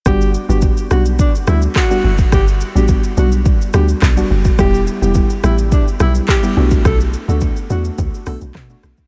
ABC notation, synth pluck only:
X:1
M:4/4
L:1/16
Q:1/4=106
K:G
V:1 name="Synth pluck"
[G,B,DF]3 [G,B,DF] z2 [G,B,DF]2 z2 [G,B,DF]2 z [G,B,DF] z2 | z3 [G,B,DF] z2 [G,B,DF]2 z2 [G,B,DF]2 z [G,B,DF] z2 | [G,B,EG]3 [G,B,EG] z2 [G,B,EG]2 z2 [G,B,EG]2 z [G,B,EG] [A,B,DF]2 | z3 [A,B,DF] z2 [A,B,DF]2 z2 [A,B,DF]2 z [A,B,DF] z2 |]